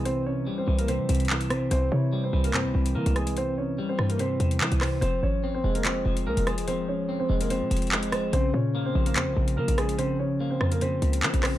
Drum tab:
HH |x-------------x-x---xxxx--x-x---|x-------------x-x-----x---x-x-x-|x-------------x-x---x-x---x-o---|x-------------x-x-----x---x-x-x-|
CP |------------------------x-------|----------------x---------------|------------------------x---x---|----------------x---------------|
SD |----------------------------r---|----------------------------r---|------------r---------------r---|----------------------------r---|

HH |x-------------x-x---xxxx--x-x---|x-------------x-x-----x---x-x-x-|x-------------x-x---x-x---x-o---|
CP |------------------------x-------|----------------x---------------|------------------------x---x---|
SD |----------------------------r---|----------------------------r---|------------r---------------r---|